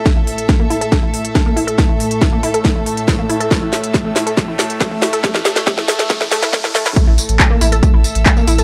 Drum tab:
HH |x-oxx-oxx-oxx-ox|x-oxx-oxx-oxx-ox|x-oxx-oxx-oxx-ox|x-oxx-oxx-oxx-ox|
TB |----------------|----------------|----------------|----------------|
CP |----------------|----------------|----------------|----------------|
SD |o---o---o---o---|o---o---o---o---|o-o-o-o-o-o-o-o-|oooooooooooooooo|
BD |o---o---o---o---|o---o---o---o---|o---o---o---o---|o---o---o---o---|

HH |x-oxx-oxx-oxx-ox|
TB |x-xxx-xxx-xxxxxx|
CP |----x-------x---|
SD |----------------|
BD |o---o---o---o---|